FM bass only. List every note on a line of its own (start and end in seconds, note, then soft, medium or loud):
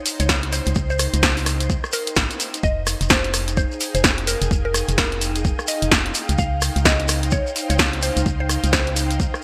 0.20 0.61 C#2 medium
0.67 0.74 C#2 loud
0.76 1.08 C#2 loud
1.14 1.78 C#2 loud
2.17 2.27 G#1 loud
2.63 2.95 F1 loud
3.01 3.65 F1 loud
3.95 4.36 F1 medium
4.42 4.48 F1 loud
4.51 4.83 F1 loud
4.89 5.53 F1 loud
5.82 6.11 F1 medium
6.29 6.36 C#2 loud
6.39 6.70 C#2 loud
6.76 7.40 C#2 loud
7.70 8.11 C#2 medium
8.17 8.23 C#2 loud
8.26 8.58 C#2 loud
8.64 9.28 C#2 loud